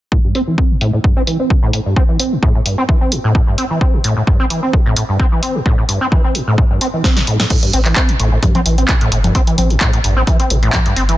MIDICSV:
0, 0, Header, 1, 4, 480
1, 0, Start_track
1, 0, Key_signature, 0, "minor"
1, 0, Tempo, 461538
1, 124, Time_signature, 4, 2, 24, 8
1, 11622, End_track
2, 0, Start_track
2, 0, Title_t, "Acid bass"
2, 0, Program_c, 0, 38
2, 124, Note_on_c, 0, 45, 77
2, 194, Note_off_c, 0, 45, 0
2, 253, Note_on_c, 0, 43, 74
2, 345, Note_off_c, 0, 43, 0
2, 364, Note_on_c, 0, 60, 97
2, 435, Note_off_c, 0, 60, 0
2, 493, Note_on_c, 0, 52, 74
2, 584, Note_off_c, 0, 52, 0
2, 604, Note_on_c, 0, 60, 78
2, 733, Note_on_c, 0, 45, 94
2, 749, Note_off_c, 0, 60, 0
2, 794, Note_off_c, 0, 45, 0
2, 844, Note_on_c, 0, 45, 99
2, 950, Note_off_c, 0, 45, 0
2, 972, Note_on_c, 0, 45, 74
2, 1034, Note_off_c, 0, 45, 0
2, 1084, Note_on_c, 0, 43, 80
2, 1190, Note_off_c, 0, 43, 0
2, 1213, Note_on_c, 0, 60, 97
2, 1274, Note_off_c, 0, 60, 0
2, 1324, Note_on_c, 0, 52, 70
2, 1430, Note_off_c, 0, 52, 0
2, 1452, Note_on_c, 0, 60, 74
2, 1563, Note_on_c, 0, 45, 98
2, 1579, Note_off_c, 0, 60, 0
2, 1634, Note_off_c, 0, 45, 0
2, 1692, Note_on_c, 0, 45, 98
2, 1784, Note_off_c, 0, 45, 0
2, 1804, Note_on_c, 0, 45, 73
2, 1874, Note_off_c, 0, 45, 0
2, 1932, Note_on_c, 0, 43, 74
2, 2024, Note_off_c, 0, 43, 0
2, 2044, Note_on_c, 0, 60, 96
2, 2115, Note_off_c, 0, 60, 0
2, 2172, Note_on_c, 0, 52, 73
2, 2264, Note_off_c, 0, 52, 0
2, 2284, Note_on_c, 0, 60, 74
2, 2412, Note_on_c, 0, 45, 95
2, 2428, Note_off_c, 0, 60, 0
2, 2474, Note_off_c, 0, 45, 0
2, 2524, Note_on_c, 0, 45, 98
2, 2630, Note_off_c, 0, 45, 0
2, 2652, Note_on_c, 0, 45, 71
2, 2714, Note_off_c, 0, 45, 0
2, 2764, Note_on_c, 0, 43, 75
2, 2870, Note_off_c, 0, 43, 0
2, 2892, Note_on_c, 0, 60, 99
2, 2953, Note_off_c, 0, 60, 0
2, 3004, Note_on_c, 0, 52, 80
2, 3110, Note_off_c, 0, 52, 0
2, 3132, Note_on_c, 0, 60, 73
2, 3243, Note_on_c, 0, 45, 95
2, 3259, Note_off_c, 0, 60, 0
2, 3314, Note_off_c, 0, 45, 0
2, 3372, Note_on_c, 0, 45, 98
2, 3464, Note_off_c, 0, 45, 0
2, 3483, Note_on_c, 0, 45, 81
2, 3554, Note_off_c, 0, 45, 0
2, 3612, Note_on_c, 0, 43, 74
2, 3704, Note_off_c, 0, 43, 0
2, 3723, Note_on_c, 0, 60, 97
2, 3794, Note_off_c, 0, 60, 0
2, 3852, Note_on_c, 0, 52, 74
2, 3944, Note_off_c, 0, 52, 0
2, 3964, Note_on_c, 0, 60, 80
2, 4092, Note_on_c, 0, 45, 99
2, 4108, Note_off_c, 0, 60, 0
2, 4154, Note_off_c, 0, 45, 0
2, 4203, Note_on_c, 0, 45, 101
2, 4310, Note_off_c, 0, 45, 0
2, 4332, Note_on_c, 0, 45, 74
2, 4394, Note_off_c, 0, 45, 0
2, 4444, Note_on_c, 0, 43, 78
2, 4550, Note_off_c, 0, 43, 0
2, 4573, Note_on_c, 0, 60, 94
2, 4634, Note_off_c, 0, 60, 0
2, 4684, Note_on_c, 0, 52, 76
2, 4790, Note_off_c, 0, 52, 0
2, 4812, Note_on_c, 0, 60, 76
2, 4923, Note_on_c, 0, 45, 101
2, 4939, Note_off_c, 0, 60, 0
2, 4994, Note_off_c, 0, 45, 0
2, 5052, Note_on_c, 0, 45, 97
2, 5144, Note_off_c, 0, 45, 0
2, 5164, Note_on_c, 0, 45, 74
2, 5234, Note_off_c, 0, 45, 0
2, 5292, Note_on_c, 0, 43, 76
2, 5384, Note_off_c, 0, 43, 0
2, 5404, Note_on_c, 0, 60, 101
2, 5474, Note_off_c, 0, 60, 0
2, 5532, Note_on_c, 0, 52, 76
2, 5624, Note_off_c, 0, 52, 0
2, 5644, Note_on_c, 0, 60, 73
2, 5772, Note_on_c, 0, 45, 96
2, 5787, Note_off_c, 0, 60, 0
2, 5833, Note_off_c, 0, 45, 0
2, 5884, Note_on_c, 0, 45, 95
2, 5990, Note_off_c, 0, 45, 0
2, 6012, Note_on_c, 0, 45, 76
2, 6073, Note_off_c, 0, 45, 0
2, 6123, Note_on_c, 0, 43, 73
2, 6230, Note_off_c, 0, 43, 0
2, 6252, Note_on_c, 0, 60, 99
2, 6313, Note_off_c, 0, 60, 0
2, 6363, Note_on_c, 0, 52, 78
2, 6470, Note_off_c, 0, 52, 0
2, 6493, Note_on_c, 0, 60, 71
2, 6603, Note_on_c, 0, 45, 99
2, 6619, Note_off_c, 0, 60, 0
2, 6674, Note_off_c, 0, 45, 0
2, 6733, Note_on_c, 0, 45, 101
2, 6824, Note_off_c, 0, 45, 0
2, 6844, Note_on_c, 0, 45, 82
2, 6915, Note_off_c, 0, 45, 0
2, 6973, Note_on_c, 0, 43, 75
2, 7065, Note_off_c, 0, 43, 0
2, 7084, Note_on_c, 0, 60, 96
2, 7155, Note_off_c, 0, 60, 0
2, 7213, Note_on_c, 0, 52, 76
2, 7304, Note_off_c, 0, 52, 0
2, 7324, Note_on_c, 0, 60, 82
2, 7453, Note_on_c, 0, 45, 100
2, 7468, Note_off_c, 0, 60, 0
2, 7514, Note_off_c, 0, 45, 0
2, 7564, Note_on_c, 0, 45, 98
2, 7670, Note_off_c, 0, 45, 0
2, 7693, Note_on_c, 0, 45, 75
2, 7754, Note_off_c, 0, 45, 0
2, 7804, Note_on_c, 0, 45, 81
2, 7875, Note_off_c, 0, 45, 0
2, 7933, Note_on_c, 0, 43, 76
2, 8024, Note_off_c, 0, 43, 0
2, 8043, Note_on_c, 0, 60, 102
2, 8114, Note_off_c, 0, 60, 0
2, 8172, Note_on_c, 0, 52, 74
2, 8264, Note_off_c, 0, 52, 0
2, 8284, Note_on_c, 0, 60, 78
2, 8412, Note_on_c, 0, 45, 99
2, 8428, Note_off_c, 0, 60, 0
2, 8474, Note_off_c, 0, 45, 0
2, 8524, Note_on_c, 0, 45, 99
2, 8630, Note_off_c, 0, 45, 0
2, 8652, Note_on_c, 0, 45, 78
2, 8714, Note_off_c, 0, 45, 0
2, 8764, Note_on_c, 0, 43, 81
2, 8870, Note_off_c, 0, 43, 0
2, 8892, Note_on_c, 0, 60, 100
2, 8954, Note_off_c, 0, 60, 0
2, 9003, Note_on_c, 0, 52, 74
2, 9110, Note_off_c, 0, 52, 0
2, 9132, Note_on_c, 0, 60, 75
2, 9243, Note_on_c, 0, 45, 101
2, 9259, Note_off_c, 0, 60, 0
2, 9314, Note_off_c, 0, 45, 0
2, 9372, Note_on_c, 0, 45, 102
2, 9464, Note_off_c, 0, 45, 0
2, 9483, Note_on_c, 0, 45, 77
2, 9554, Note_off_c, 0, 45, 0
2, 9612, Note_on_c, 0, 43, 76
2, 9704, Note_off_c, 0, 43, 0
2, 9723, Note_on_c, 0, 60, 97
2, 9794, Note_off_c, 0, 60, 0
2, 9852, Note_on_c, 0, 52, 76
2, 9944, Note_off_c, 0, 52, 0
2, 9963, Note_on_c, 0, 60, 76
2, 10092, Note_on_c, 0, 45, 100
2, 10107, Note_off_c, 0, 60, 0
2, 10153, Note_off_c, 0, 45, 0
2, 10203, Note_on_c, 0, 45, 98
2, 10310, Note_off_c, 0, 45, 0
2, 10332, Note_on_c, 0, 45, 72
2, 10394, Note_off_c, 0, 45, 0
2, 10443, Note_on_c, 0, 43, 75
2, 10550, Note_off_c, 0, 43, 0
2, 10572, Note_on_c, 0, 60, 101
2, 10634, Note_off_c, 0, 60, 0
2, 10684, Note_on_c, 0, 52, 82
2, 10790, Note_off_c, 0, 52, 0
2, 10812, Note_on_c, 0, 60, 77
2, 10924, Note_on_c, 0, 45, 96
2, 10939, Note_off_c, 0, 60, 0
2, 10994, Note_off_c, 0, 45, 0
2, 11052, Note_on_c, 0, 45, 102
2, 11144, Note_off_c, 0, 45, 0
2, 11292, Note_on_c, 0, 43, 79
2, 11384, Note_off_c, 0, 43, 0
2, 11403, Note_on_c, 0, 60, 102
2, 11474, Note_off_c, 0, 60, 0
2, 11532, Note_on_c, 0, 52, 73
2, 11622, Note_off_c, 0, 52, 0
2, 11622, End_track
3, 0, Start_track
3, 0, Title_t, "Sub bass"
3, 0, Program_c, 1, 38
3, 8044, Note_on_c, 1, 33, 99
3, 8236, Note_off_c, 1, 33, 0
3, 8524, Note_on_c, 1, 33, 83
3, 8716, Note_off_c, 1, 33, 0
3, 9003, Note_on_c, 1, 33, 83
3, 9196, Note_off_c, 1, 33, 0
3, 9483, Note_on_c, 1, 31, 81
3, 9676, Note_off_c, 1, 31, 0
3, 9963, Note_on_c, 1, 33, 99
3, 10156, Note_off_c, 1, 33, 0
3, 10443, Note_on_c, 1, 33, 83
3, 10636, Note_off_c, 1, 33, 0
3, 10923, Note_on_c, 1, 33, 85
3, 11116, Note_off_c, 1, 33, 0
3, 11403, Note_on_c, 1, 31, 82
3, 11596, Note_off_c, 1, 31, 0
3, 11622, End_track
4, 0, Start_track
4, 0, Title_t, "Drums"
4, 123, Note_on_c, 9, 36, 108
4, 227, Note_off_c, 9, 36, 0
4, 364, Note_on_c, 9, 46, 93
4, 468, Note_off_c, 9, 46, 0
4, 603, Note_on_c, 9, 36, 108
4, 707, Note_off_c, 9, 36, 0
4, 844, Note_on_c, 9, 46, 93
4, 948, Note_off_c, 9, 46, 0
4, 1083, Note_on_c, 9, 36, 108
4, 1187, Note_off_c, 9, 36, 0
4, 1324, Note_on_c, 9, 46, 98
4, 1428, Note_off_c, 9, 46, 0
4, 1563, Note_on_c, 9, 36, 108
4, 1667, Note_off_c, 9, 36, 0
4, 1803, Note_on_c, 9, 46, 96
4, 1907, Note_off_c, 9, 46, 0
4, 2043, Note_on_c, 9, 36, 114
4, 2147, Note_off_c, 9, 36, 0
4, 2283, Note_on_c, 9, 46, 98
4, 2387, Note_off_c, 9, 46, 0
4, 2523, Note_on_c, 9, 36, 112
4, 2627, Note_off_c, 9, 36, 0
4, 2763, Note_on_c, 9, 46, 99
4, 2867, Note_off_c, 9, 46, 0
4, 3003, Note_on_c, 9, 36, 112
4, 3107, Note_off_c, 9, 36, 0
4, 3243, Note_on_c, 9, 46, 102
4, 3347, Note_off_c, 9, 46, 0
4, 3483, Note_on_c, 9, 36, 118
4, 3587, Note_off_c, 9, 36, 0
4, 3723, Note_on_c, 9, 46, 104
4, 3827, Note_off_c, 9, 46, 0
4, 3963, Note_on_c, 9, 36, 114
4, 4067, Note_off_c, 9, 36, 0
4, 4204, Note_on_c, 9, 46, 99
4, 4308, Note_off_c, 9, 46, 0
4, 4444, Note_on_c, 9, 36, 118
4, 4548, Note_off_c, 9, 36, 0
4, 4684, Note_on_c, 9, 46, 100
4, 4788, Note_off_c, 9, 46, 0
4, 4924, Note_on_c, 9, 36, 114
4, 5028, Note_off_c, 9, 36, 0
4, 5164, Note_on_c, 9, 46, 106
4, 5268, Note_off_c, 9, 46, 0
4, 5403, Note_on_c, 9, 36, 121
4, 5507, Note_off_c, 9, 36, 0
4, 5644, Note_on_c, 9, 46, 104
4, 5748, Note_off_c, 9, 46, 0
4, 5883, Note_on_c, 9, 36, 116
4, 5987, Note_off_c, 9, 36, 0
4, 6124, Note_on_c, 9, 46, 99
4, 6228, Note_off_c, 9, 46, 0
4, 6363, Note_on_c, 9, 36, 114
4, 6467, Note_off_c, 9, 36, 0
4, 6604, Note_on_c, 9, 46, 101
4, 6708, Note_off_c, 9, 46, 0
4, 6844, Note_on_c, 9, 36, 116
4, 6948, Note_off_c, 9, 36, 0
4, 7084, Note_on_c, 9, 46, 105
4, 7188, Note_off_c, 9, 46, 0
4, 7324, Note_on_c, 9, 36, 120
4, 7324, Note_on_c, 9, 38, 59
4, 7428, Note_off_c, 9, 36, 0
4, 7428, Note_off_c, 9, 38, 0
4, 7452, Note_on_c, 9, 38, 60
4, 7556, Note_off_c, 9, 38, 0
4, 7564, Note_on_c, 9, 46, 101
4, 7668, Note_off_c, 9, 46, 0
4, 7692, Note_on_c, 9, 38, 83
4, 7796, Note_off_c, 9, 38, 0
4, 7803, Note_on_c, 9, 42, 79
4, 7803, Note_on_c, 9, 49, 89
4, 7804, Note_on_c, 9, 36, 112
4, 7907, Note_off_c, 9, 42, 0
4, 7907, Note_off_c, 9, 49, 0
4, 7908, Note_off_c, 9, 36, 0
4, 7932, Note_on_c, 9, 42, 53
4, 8036, Note_off_c, 9, 42, 0
4, 8043, Note_on_c, 9, 46, 100
4, 8147, Note_off_c, 9, 46, 0
4, 8167, Note_on_c, 9, 39, 36
4, 8172, Note_on_c, 9, 42, 37
4, 8271, Note_off_c, 9, 39, 0
4, 8276, Note_off_c, 9, 42, 0
4, 8279, Note_on_c, 9, 39, 121
4, 8283, Note_on_c, 9, 42, 79
4, 8284, Note_on_c, 9, 36, 114
4, 8383, Note_off_c, 9, 39, 0
4, 8387, Note_off_c, 9, 42, 0
4, 8388, Note_off_c, 9, 36, 0
4, 8412, Note_on_c, 9, 42, 37
4, 8516, Note_off_c, 9, 42, 0
4, 8523, Note_on_c, 9, 46, 102
4, 8627, Note_off_c, 9, 46, 0
4, 8763, Note_on_c, 9, 36, 110
4, 8763, Note_on_c, 9, 42, 78
4, 8763, Note_on_c, 9, 64, 80
4, 8867, Note_off_c, 9, 36, 0
4, 8867, Note_off_c, 9, 42, 0
4, 8867, Note_off_c, 9, 64, 0
4, 8892, Note_on_c, 9, 42, 36
4, 8892, Note_on_c, 9, 64, 86
4, 8996, Note_off_c, 9, 42, 0
4, 8996, Note_off_c, 9, 64, 0
4, 9003, Note_on_c, 9, 46, 101
4, 9107, Note_off_c, 9, 46, 0
4, 9132, Note_on_c, 9, 42, 37
4, 9236, Note_off_c, 9, 42, 0
4, 9238, Note_on_c, 9, 39, 125
4, 9243, Note_on_c, 9, 42, 83
4, 9244, Note_on_c, 9, 36, 120
4, 9342, Note_off_c, 9, 39, 0
4, 9347, Note_off_c, 9, 42, 0
4, 9348, Note_off_c, 9, 36, 0
4, 9372, Note_on_c, 9, 42, 36
4, 9476, Note_off_c, 9, 42, 0
4, 9484, Note_on_c, 9, 46, 104
4, 9588, Note_off_c, 9, 46, 0
4, 9612, Note_on_c, 9, 42, 55
4, 9612, Note_on_c, 9, 64, 89
4, 9716, Note_off_c, 9, 42, 0
4, 9716, Note_off_c, 9, 64, 0
4, 9723, Note_on_c, 9, 36, 116
4, 9724, Note_on_c, 9, 42, 78
4, 9827, Note_off_c, 9, 36, 0
4, 9828, Note_off_c, 9, 42, 0
4, 9852, Note_on_c, 9, 42, 51
4, 9956, Note_off_c, 9, 42, 0
4, 9963, Note_on_c, 9, 46, 102
4, 9963, Note_on_c, 9, 64, 87
4, 10067, Note_off_c, 9, 46, 0
4, 10067, Note_off_c, 9, 64, 0
4, 10092, Note_on_c, 9, 42, 36
4, 10196, Note_off_c, 9, 42, 0
4, 10198, Note_on_c, 9, 39, 118
4, 10203, Note_on_c, 9, 36, 120
4, 10203, Note_on_c, 9, 42, 77
4, 10302, Note_off_c, 9, 39, 0
4, 10307, Note_off_c, 9, 36, 0
4, 10307, Note_off_c, 9, 42, 0
4, 10332, Note_on_c, 9, 42, 36
4, 10436, Note_off_c, 9, 42, 0
4, 10443, Note_on_c, 9, 46, 103
4, 10547, Note_off_c, 9, 46, 0
4, 10683, Note_on_c, 9, 36, 116
4, 10683, Note_on_c, 9, 42, 75
4, 10787, Note_off_c, 9, 36, 0
4, 10787, Note_off_c, 9, 42, 0
4, 10812, Note_on_c, 9, 42, 36
4, 10916, Note_off_c, 9, 42, 0
4, 10924, Note_on_c, 9, 46, 106
4, 11028, Note_off_c, 9, 46, 0
4, 11052, Note_on_c, 9, 42, 36
4, 11156, Note_off_c, 9, 42, 0
4, 11159, Note_on_c, 9, 39, 122
4, 11163, Note_on_c, 9, 36, 124
4, 11163, Note_on_c, 9, 42, 78
4, 11163, Note_on_c, 9, 64, 90
4, 11263, Note_off_c, 9, 39, 0
4, 11267, Note_off_c, 9, 36, 0
4, 11267, Note_off_c, 9, 42, 0
4, 11267, Note_off_c, 9, 64, 0
4, 11292, Note_on_c, 9, 42, 36
4, 11396, Note_off_c, 9, 42, 0
4, 11403, Note_on_c, 9, 46, 106
4, 11507, Note_off_c, 9, 46, 0
4, 11532, Note_on_c, 9, 42, 53
4, 11622, Note_off_c, 9, 42, 0
4, 11622, End_track
0, 0, End_of_file